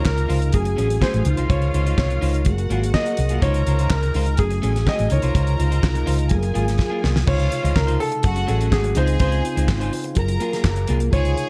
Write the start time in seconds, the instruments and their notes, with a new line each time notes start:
Already playing: tine electric piano C3 C#3 D#4 F4, french horn section D#3 G#3 D#4 F4, string section A#4 A#5
0.05 fingered electric bass C#2, grand piano A#4, kick, snare, clap
0.17 muted clean electric guitar stroke, closed hi-hat
0.28 fingered electric bass C#2, clean electric guitar D#4 F4 C5, open hi-hat
0.40 muted clean electric guitar stroke, closed hi-hat
0.53 fingered electric bass F#1, tine electric piano F#3 A3 C#4 G#4, french horn section A3 F#4 G#4, string section G#4 G#5, grand piano G#4, kick, closed hi-hat
0.64 muted clean electric guitar stroke, closed hi-hat
0.77 fingered electric bass A1, clean electric guitar A3 C#4 G#4, closed hi-hat
0.89 muted clean electric guitar stroke, closed hi-hat
1.01 clean electric guitar A3 C#4 G#4, grand piano C5, kick, snare, clap
1.13 fingered electric bass A1, muted clean electric guitar stroke, closed hi-hat
1.24 fingered electric bass C#2, tine electric piano C3 C#3 D#4 F4, french horn section D#3 G#3 D#4, string section F4 F5, muted clean electric guitar stroke, closed hi-hat
1.37 fingered electric bass C2, clean electric guitar D#4 F4 C5, closed hi-hat
1.49 fingered electric bass C#2, clean electric guitar D#4 F4 C5, grand piano C#5, kick, closed hi-hat
1.62 closed hi-hat
1.74 fingered electric bass C#2, clean electric guitar D#4 F4 C5, closed hi-hat
1.86 clean electric guitar D#4 F4 C5, closed hi-hat
1.98 fingered electric bass C2, grand piano C#5, kick, snare, clap
2.10 muted clean electric guitar stroke, closed hi-hat
2.21 fingered electric bass C#2, clean electric guitar D#4 F4 C5, open hi-hat
2.34 muted clean electric guitar stroke, closed hi-hat
2.44 fingered electric bass F#1, tine electric piano F#3 F#4 G#4 A#4, french horn section F#3 G#4 A#4, string section F#4 F#5, kick, closed hi-hat
2.58 muted clean electric guitar stroke, closed hi-hat
2.70 fingered electric bass G#1, clean electric guitar A#3 F4 G#4, closed hi-hat
2.83 muted clean electric guitar stroke, closed hi-hat
2.94 clean electric guitar A#3 F4 G#4, grand piano D#5, kick, snare, clap
3.06 muted clean electric guitar stroke, closed hi-hat
3.17 fingered electric bass C2, muted clean electric guitar stroke, closed hi-hat
3.29 clean electric guitar A#3 F4 G#4, closed hi-hat
3.41 fingered electric bass C#2, tine electric piano C3 C#3 D#4 F4, french horn section D#3 G#3 D#4, clean electric guitar D#4 F4 C5, string section A#4 A#5, grand piano C#5, kick, closed hi-hat
3.54 closed hi-hat
3.67 fingered electric bass C#2, clean electric guitar D#4 F4 C5, closed hi-hat
3.79 clean electric guitar D#4 F4 C5, closed hi-hat
3.90 fingered electric bass C#2, grand piano A#4, kick, snare, clap
4.03 muted clean electric guitar stroke, closed hi-hat
4.14 fingered electric bass C#2, clean electric guitar D#4 F4 C5, open hi-hat
4.26 muted clean electric guitar stroke, closed hi-hat
4.37 fingered electric bass F#1, tine electric piano F#3 A3 C#4 G#4, french horn section A3 F#4 G#4, string section G#4 G#5, grand piano G#4, kick, closed hi-hat
4.50 muted clean electric guitar stroke, closed hi-hat
4.62 fingered electric bass A1, clean electric guitar A3 C#4 G#4, closed hi-hat
4.75 muted clean electric guitar stroke, snare, closed hi-hat
4.86 clean electric guitar A3 C#4 G#4, grand piano D#5, kick, snare, clap
4.98 fingered electric bass A1, muted clean electric guitar stroke, closed hi-hat
5.09 fingered electric bass C#2, tine electric piano C3 C#3 D#4 E4, french horn section D#3 G#3 D#4 F4, string section A#4 A#5, grand piano C#5, muted clean electric guitar stroke, closed hi-hat
5.18 tine electric piano F4, closed hi-hat
5.22 fingered electric bass C2, clean electric guitar D#4 F4 C5
5.35 fingered electric bass C#2, clean electric guitar D#4 F4 C5, kick, closed hi-hat
5.47 closed hi-hat
5.59 fingered electric bass C#2, clean electric guitar D#4 F4 C5, closed hi-hat
5.71 clean electric guitar D#4 F4 C5, closed hi-hat
5.83 fingered electric bass C2, kick, snare, clap
5.94 muted clean electric guitar stroke, closed hi-hat
6.06 fingered electric bass C#2, clean electric guitar D#4 F4 C5, open hi-hat
6.18 muted clean electric guitar stroke, closed hi-hat
6.29 fingered electric bass F#1, tine electric piano F#3 F4 G#4 A4, french horn section F#3 G#4 A#4, string section G#4 G#5, kick, closed hi-hat
6.39 tine electric piano A#4, closed hi-hat
6.43 muted clean electric guitar stroke
6.54 fingered electric bass G#1, clean electric guitar A#3 F4 G#4, closed hi-hat
6.66 muted clean electric guitar stroke, snare, closed hi-hat
6.78 muted clean electric guitar stroke, kick, snare
6.90 clean electric guitar A#3 F4 G#4
7.02 fingered electric bass C2, clean electric guitar A#3 F4 G#4, snare
7.15 muted clean electric guitar stroke, snare
7.26 fingered electric bass C#2, tine electric piano C3 C#3 D#4 F4, french horn section D#3 G#3 D#4 F4, clean electric guitar D#4 F4 C5, string section F4 F5, grand piano C#5, kick, crash
7.40 closed hi-hat
7.51 muted clean electric guitar stroke, closed hi-hat
7.63 fingered electric bass C#2, clean electric guitar D#4 F4 C5, closed hi-hat
7.75 fingered electric bass C#2, grand piano A#4, muted clean electric guitar stroke, kick, snare, clap
7.87 clean electric guitar D#4 F4 C5, closed hi-hat
7.99 grand piano A4, muted clean electric guitar stroke, open hi-hat
8.12 muted clean electric guitar stroke, closed hi-hat
8.23 fingered electric bass F#1, tine electric piano F#3 C#4 G#4 A4, french horn section F#3 A3 F#4, string section F#4 F#5, muted clean electric guitar stroke, kick, closed hi-hat
8.36 muted clean electric guitar stroke, closed hi-hat
8.47 fingered electric bass A1, clean electric guitar A3 C#4 G#4, grand piano A4, closed hi-hat
8.60 clean electric guitar A3 C#4 G#4, closed hi-hat
8.72 fingered electric bass G#1, grand piano G#4, kick, snare, clap
8.84 muted clean electric guitar stroke, closed hi-hat
8.94 fingered electric bass C#2, tine electric piano C#3 C4 D#4 F4, french horn section C#3 C4 D#4 F4, clean electric guitar D#4 F4 C5, string section G#4 G#5, grand piano C5, closed hi-hat
9.07 muted clean electric guitar stroke, closed hi-hat
9.20 fingered electric bass C#2, clean electric guitar D#4 F4 C5, grand piano C5, kick, closed hi-hat
9.32 closed hi-hat
9.44 muted clean electric guitar stroke, closed hi-hat
9.56 fingered electric bass C#2, clean electric guitar D#4 F4 C5, closed hi-hat
9.69 muted clean electric guitar stroke, kick, snare, clap
9.80 clean electric guitar D#4 F4 C5, closed hi-hat
9.93 muted clean electric guitar stroke, open hi-hat
10.04 muted clean electric guitar stroke, closed hi-hat
10.15 fingered electric bass F#1, tine electric piano F#3 F4 G#4 A#4, french horn section F#3 F4 G#4 A#4, string section A#4 A#5, muted clean electric guitar stroke, kick, closed hi-hat
10.28 muted clean electric guitar stroke, closed hi-hat
10.40 clean electric guitar A#3 F4 G#4, closed hi-hat
10.52 clean electric guitar A#3 F4 G#4, snare, closed hi-hat
10.64 fingered electric bass F#1, kick, snare, clap
10.76 muted clean electric guitar stroke, closed hi-hat
10.88 fingered electric bass C2, clean electric guitar A#3 F4 G#4, closed hi-hat
11.00 muted clean electric guitar stroke, closed hi-hat
11.12 fingered electric bass C#2, tine electric piano C3 C#3 D#4 F4, french horn section D#3 G#3 D#4 F4, clean electric guitar D#4 F4 C5, string section G#4 G#5, grand piano C#5, kick, closed hi-hat
11.25 closed hi-hat
11.37 muted clean electric guitar stroke, closed hi-hat